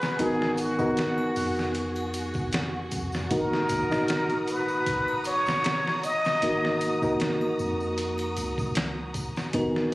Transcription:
Already playing: B3 D#4 F#4 G#4 B4
0.01 snare, tambourine
0.19 G#1 B3 D#4 F#4 G#4 A#4, closed hi-hat, tambourine
0.42 snare
0.57 F#4, closed hi-hat, tambourine
0.78 B3 D#4 F#4 A#4, kick, tambourine
0.97 snare, closed hi-hat, tambourine
1.18 triangle
1.36 F2, open hi-hat, tambourine
1.56 snare, tambourine
1.74 closed hi-hat, tambourine
1.96 closed hi-hat, triangle
2.14 closed hi-hat, tambourine, triangle
2.34 kick, tambourine
2.52 snare, closed hi-hat, tambourine
2.91 F2, kick, closed hi-hat, tambourine
3.12 snare, tambourine
3.30 G#1 A#3 D#4 F#4 A#4 A#5 D#6, kick, closed hi-hat, tambourine
3.53 snare
3.69 kick, closed hi-hat, tambourine
3.90 A#2 D#4 F#4, snare, tambourine
4.08 snare, closed hi-hat, tambourine
4.30 closed hi-hat
4.48 B4, closed hi-hat, tambourine
4.68 tambourine
4.86 kick, closed hi-hat, tambourine
5.08 triangle
5.24 C#5, closed hi-hat, tambourine, triangle
5.46 D#1, snare, tambourine
5.64 snare, closed hi-hat, tambourine
5.87 snare
6.03 D#5, closed hi-hat, tambourine, triangle
6.25 snare, tambourine
6.42 G#1 A#3 D#4 F#4 A#4, closed hi-hat, tambourine
6.65 snare
6.81 closed hi-hat, tambourine
7.01 A#3 D#4 F#4 A#4, kick, tambourine
7.20 snare, closed hi-hat, tambourine
7.41 triangle
7.59 F2, tambourine
7.80 tambourine
7.98 closed hi-hat, tambourine
8.18 closed hi-hat, triangle
8.37 C#2, closed hi-hat, tambourine, triangle
8.58 kick, tambourine
8.75 snare, closed hi-hat, tambourine
9.14 kick, closed hi-hat, tambourine
9.36 snare, tambourine
9.53 G#1 B3 D#4 F#4 G#4 A#4, kick, closed hi-hat, tambourine
9.76 snare

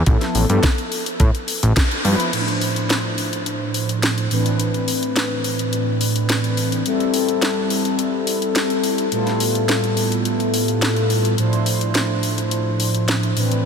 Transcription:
0.06 A1 F3 B3 E4 A4, kick, closed hi-hat
0.21 snare, closed hi-hat
0.35 A1, open hi-hat
0.49 G2 F3 B3 E4 A4, closed hi-hat
0.63 kick, snare, closed hi-hat
0.78 closed hi-hat
0.92 open hi-hat
1.06 closed hi-hat
1.20 A2, kick, closed hi-hat
1.35 closed hi-hat
1.48 open hi-hat
1.63 A1, closed hi-hat
1.76 kick, snare, closed hi-hat
1.91 closed hi-hat
2.04 G2 F3 B3 E4 B4, open hi-hat
2.20 closed hi-hat
2.32 A2 F3 D4 E4 C5, closed hi-hat, crash
2.48 closed hi-hat
2.61 open hi-hat
2.76 closed hi-hat
2.90 snare, closed hi-hat
3.18 open hi-hat
3.33 closed hi-hat
3.46 closed hi-hat
3.74 open hi-hat
3.89 closed hi-hat
4.03 snare, closed hi-hat
4.18 closed hi-hat
4.30 A2 E3 C4 D4 B4, open hi-hat
4.46 closed hi-hat
4.60 closed hi-hat
4.74 closed hi-hat
4.88 open hi-hat
5.03 closed hi-hat
5.16 snare, closed hi-hat
5.44 open hi-hat
5.59 closed hi-hat
5.73 closed hi-hat
6.01 open hi-hat
6.16 closed hi-hat
6.29 snare, closed hi-hat
6.44 closed hi-hat
6.57 open hi-hat
6.72 closed hi-hat
6.85 G3 C4 E4 A4, closed hi-hat
7.00 closed hi-hat
7.14 open hi-hat
7.29 closed hi-hat
7.42 snare, closed hi-hat
7.70 open hi-hat
7.85 closed hi-hat
7.99 closed hi-hat
8.27 open hi-hat
8.42 closed hi-hat
8.55 snare, closed hi-hat
8.70 closed hi-hat
8.84 open hi-hat
8.98 closed hi-hat
9.11 A2 G3 B3 E4 F4 A4, closed hi-hat
9.27 snare, closed hi-hat
9.40 open hi-hat
9.55 closed hi-hat
9.69 snare, closed hi-hat
9.84 closed hi-hat
9.97 open hi-hat
10.12 closed hi-hat
10.25 closed hi-hat
10.40 closed hi-hat
10.54 open hi-hat
10.68 closed hi-hat
10.82 snare, closed hi-hat
10.96 closed hi-hat
11.10 open hi-hat
11.25 closed hi-hat
11.38 A2 F3 D4 E4 C5, closed hi-hat
11.53 closed hi-hat
11.66 open hi-hat
11.81 closed hi-hat
11.95 snare, closed hi-hat
12.23 open hi-hat
12.38 closed hi-hat
12.51 closed hi-hat
12.80 open hi-hat
12.95 closed hi-hat
13.08 snare, closed hi-hat
13.23 closed hi-hat
13.36 A2 E3 C4 D4 B4, open hi-hat
13.52 closed hi-hat

